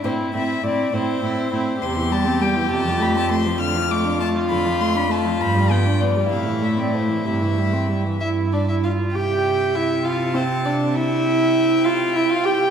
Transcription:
<<
  \new Staff \with { instrumentName = "Violin" } { \time 6/8 \key a \minor \tempo 4. = 67 c''8 e''8 d''8 c''4. | \key c \major c'''8 a''8 g''8 a''8 b''16 a''16 c'''8 | f'''8 d'''8 a''8 b''8 c'''16 b''16 a''8 | b''8 g''8 d''8 f''8 e''16 d''16 c''8 |
e''4. r4. | e''4. a''4. | g''2. | }
  \new Staff \with { instrumentName = "Violin" } { \time 6/8 \key a \minor e'8 e'8 e'8 e'8 e'8 e'8 | \key c \major g'2. | f'2.~ | f'4. e'4.~ |
e'4. e''8 d''16 e''16 f''8 | g''4 e''8 f''8 c''8 d''8 | e''4. f''8 e''16 f''16 g''8 | }
  \new Staff \with { instrumentName = "Viola" } { \time 6/8 \key a \minor c'8 c'8 c'8 c'8 c'8 c'8 | \key c \major c16 e16 g16 c'16 g16 e16 c16 f16 a16 c'16 a16 f16 | d16 f16 a16 d'16 a16 f16 d16 f16 a16 d'16 a16 f16 | f16 g16 b16 d'16 b16 g16 c16 e16 a16 c'16 a16 e16 |
c16 e16 g16 c'16 g16 e16 e'8 d'16 e'16 f'8 | g'4 e'8 f'8 c'8 d'8 | e'4. f'8 e'16 f'16 g'8 | }
  \new Staff \with { instrumentName = "Cello" } { \clef bass \time 6/8 \key a \minor a,8 a,8 a,8 a,8 a,8 a,8 | \key c \major e,4. f,4. | f,4. f,4. | g,4. a,4. |
g,4. g,4. | c2.~ | c2. | }
>>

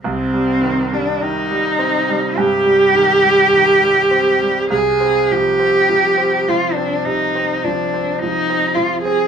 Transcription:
<<
  \new Staff \with { instrumentName = "Cello" } { \time 4/4 \key c \minor \tempo 4 = 52 c'8. d'16 ees'4 g'2 | aes'8 g'4 f'16 d'16 ees'8 d'8 ees'8 f'16 aes'16 | }
  \new Staff \with { instrumentName = "Grand piano" } { \clef bass \time 4/4 \key c \minor c,16 g16 ees16 g16 ees16 g16 c'16 g16 g,16 g16 ees16 g16 ees16 g16 c'16 g16 | c,16 c'16 f16 c'16 f16 c'16 f16 c'16 c16 c'16 f16 c'16 f16 c'16 f16 c'16 | }
>>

